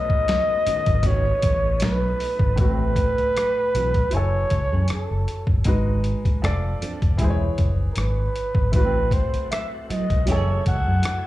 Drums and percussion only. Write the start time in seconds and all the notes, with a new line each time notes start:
0.10 kick
0.28 snare, closed hi-hat
0.67 closed hi-hat
0.86 kick, closed hi-hat
1.03 kick, closed hi-hat
1.42 kick, closed hi-hat
1.80 snare, closed hi-hat
2.20 open hi-hat
2.39 kick
2.57 kick, closed hi-hat
2.96 kick, closed hi-hat
3.18 closed hi-hat
3.37 cross-stick, closed hi-hat
3.75 closed hi-hat
3.94 kick, closed hi-hat
4.11 closed hi-hat
4.50 kick, closed hi-hat
4.88 cross-stick, closed hi-hat
5.28 closed hi-hat
5.47 kick
5.64 kick, closed hi-hat
6.04 closed hi-hat
6.25 kick, closed hi-hat
6.44 cross-stick, closed hi-hat
6.82 closed hi-hat
7.02 kick, closed hi-hat
7.18 kick, closed hi-hat
7.58 kick, closed hi-hat
7.96 cross-stick, closed hi-hat
8.36 closed hi-hat
8.55 kick
8.73 kick, closed hi-hat
9.11 kick, closed hi-hat
9.34 closed hi-hat
9.52 cross-stick, closed hi-hat
9.90 closed hi-hat
10.10 kick, closed hi-hat
10.27 closed hi-hat
10.66 kick, closed hi-hat
11.03 cross-stick, closed hi-hat